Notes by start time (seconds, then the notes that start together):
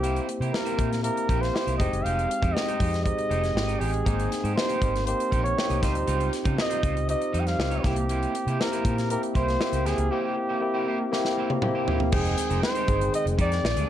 Already playing: C2 A#3 C4 E4 G4
0.03 A#3 E4 G4 C5, closed hi-hat
0.16 closed hi-hat
0.28 muted clean electric guitar stroke, closed hi-hat
0.40 C3 A#3 E4 G4 C5, closed hi-hat
0.53 A#3 C4 E4 G4 A#4, snare
0.65 A#3 E4 G4 C5, closed hi-hat
0.78 A#2 A#3 E4 G4 C5, kick, closed hi-hat
0.91 muted clean electric guitar stroke, snare, closed hi-hat
1.03 A#3 C4 E4 G4 A#4, muted clean electric guitar stroke, closed hi-hat
1.16 muted clean electric guitar stroke, closed hi-hat
1.29 A#1 A#3 E4 G4 C5, kick, closed hi-hat
1.41 C5, muted clean electric guitar stroke, snare, closed hi-hat
1.54 A#3 C4 E4 G4, muted clean electric guitar stroke, snare
1.67 C2 A#3 E4 G4 C5, closed hi-hat
1.78 F1 G#3 C4 D#4 G4 C5 D#5, kick, closed hi-hat
1.93 F#1, muted clean electric guitar stroke, closed hi-hat
2.04 F1 G#3 D#4 G4 C5 F5, closed hi-hat
2.19 closed hi-hat
2.29 muted clean electric guitar stroke, closed hi-hat
2.42 F2 G#3 D#4 G4 C5, kick, closed hi-hat
2.53 G#3 C4 D#4 G4 D#5, muted clean electric guitar stroke, snare
2.68 G#3 D#4 G4 C5, closed hi-hat
2.80 F2 G#3 D#4 G4 C5, kick, open hi-hat
2.92 muted clean electric guitar stroke, snare, closed hi-hat
3.04 G#3 C4 D#4 G4 D#5, muted clean electric guitar stroke, kick, closed hi-hat
3.18 muted clean electric guitar stroke, closed hi-hat
3.29 F1 G#3 D#4 G4 C5, closed hi-hat
3.43 muted clean electric guitar stroke, snare, closed hi-hat
3.55 G#1 G#3 C4 D#4 G4, muted clean electric guitar stroke, snare
3.67 G#3 D#4 G4 D#5, closed hi-hat
3.79 A1 G#3 D#4 G4 G#4 C5, open hi-hat
3.92 muted clean electric guitar stroke, closed hi-hat
4.05 G#1 A#3 C4 D#4 G4 C5 G5, kick, closed hi-hat
4.20 closed hi-hat
4.31 muted clean electric guitar stroke, snare, closed hi-hat
4.44 G#2 A#3 D#4 G4 C5, closed hi-hat
4.56 A#3 C4 D#4 G4 C5, muted clean electric guitar stroke, snare
4.69 A#3 D#4 G4 C5, closed hi-hat
4.82 G#1 A#3 D#4 G4 C5, kick, closed hi-hat
4.95 muted clean electric guitar stroke, snare, closed hi-hat
5.06 A#3 C4 D#4 G4 C5, closed hi-hat
5.20 muted clean electric guitar stroke, closed hi-hat
5.31 A#1 A#3 D#4 G4 C5, kick, closed hi-hat
5.43 C#5, muted clean electric guitar stroke, closed hi-hat
5.57 A#3 C4 D#4 G4, muted clean electric guitar stroke, snare
5.70 C2 A#3 D#4 G4 D#5, closed hi-hat
5.82 C#2 G3 C4 D#4 F4 G4 C5, kick, snare, closed hi-hat
5.95 D2, muted clean electric guitar stroke, closed hi-hat
6.07 C#2 G3 D#4 F4 C5, closed hi-hat
6.20 closed hi-hat
6.33 muted clean electric guitar stroke, snare, closed hi-hat
6.44 C#3 G3 D#4 F4 C5, kick, closed hi-hat
6.58 C4 D#4 F4 G4 D#5, muted clean electric guitar stroke, snare
6.70 G3 D#4 F4 C5, closed hi-hat
6.83 C#2 G3 D#4 F4 C5, kick, closed hi-hat
6.95 muted clean electric guitar stroke, closed hi-hat
7.08 C4 D#4 F4 G4 D#5, muted clean electric guitar stroke, closed hi-hat
7.21 muted clean electric guitar stroke, closed hi-hat
7.33 F2 G3 D#4 F4 C5, closed hi-hat
7.40 G5
7.45 F5, muted clean electric guitar stroke, snare, closed hi-hat
7.58 C#2 C4 D#4 F4 G4, muted clean electric guitar stroke, snare
7.71 G3 D#4 F4 C#5, closed hi-hat
7.83 C2 A#3 C4 E4 G4 C5, kick, snare, closed hi-hat
7.96 muted clean electric guitar stroke, closed hi-hat
8.09 A#3 E4 G4 C5, closed hi-hat
8.23 closed hi-hat
8.35 muted clean electric guitar stroke, closed hi-hat
8.47 C3 A#3 E4 G4 C5, closed hi-hat
8.60 A#3 C4 E4 G4 A#4, muted clean electric guitar stroke, snare
8.72 A#3 E4 G4 C5, closed hi-hat
8.84 A#2 A#3 E4 G4 C5, kick, closed hi-hat
8.98 muted clean electric guitar stroke, snare, closed hi-hat
9.09 A#3 C4 E4 G4 A#4, muted clean electric guitar stroke, closed hi-hat
9.22 muted clean electric guitar stroke, closed hi-hat
9.34 C2 A#3 E4 G4 C5, kick, closed hi-hat
9.47 muted clean electric guitar stroke, snare, closed hi-hat
9.60 A#3 C4 E4 G4, muted clean electric guitar stroke, snare
9.72 C#2 A#3 E4 G4 C5, closed hi-hat
9.85 D2 A#3 E4 G4 G#4 C5, snare, closed hi-hat
9.98 C#2, muted clean electric guitar stroke, closed hi-hat
10.11 A#3 C4 E4 G4 C5
10.37 muted clean electric guitar stroke
10.49 A#3 E4 G4 C5
10.61 A#3 C4 E4 G4, muted clean electric guitar stroke
10.74 A#3 E4 G4 C5
10.87 A#3 E4 G4 C5
11.00 muted clean electric guitar stroke
11.12 A#3 C4 E4 G4, muted clean electric guitar stroke, snare
11.25 muted clean electric guitar stroke, snare
11.37 A#3 E4 G4 C5
11.50 muted clean electric guitar stroke, high tom
11.62 A#3 C4 E4 G4, muted clean electric guitar stroke, mid tom
11.75 A#3 E4 G4 C5
11.88 A#3 E4 G4 C5, floor tom
12.00 muted clean electric guitar stroke, floor tom
12.12 F1 D#3 G#3 C4 D#4 G4 G#4 C5 G5, kick, crash
12.25 closed hi-hat
12.38 muted clean electric guitar stroke, snare, closed hi-hat
12.50 F1 G#3 D#4 G4 C5, closed hi-hat
12.63 C5, muted clean electric guitar stroke, snare
12.75 G#3 D#4 G4 C5, closed hi-hat
12.88 G1 G#3 C4 D#4 G4 G#4 C5, kick, closed hi-hat
13.01 muted clean electric guitar stroke, closed hi-hat
13.13 D#5, muted clean electric guitar stroke, closed hi-hat
13.26 F1, muted clean electric guitar stroke, closed hi-hat
13.38 F2 G#3 D#4 G4 C5 D5, kick, closed hi-hat
13.52 muted clean electric guitar stroke, snare, closed hi-hat
13.63 A#1 C3 G#3 D4, muted clean electric guitar stroke, snare
13.76 D2 A#3 D4 G#4 D5, closed hi-hat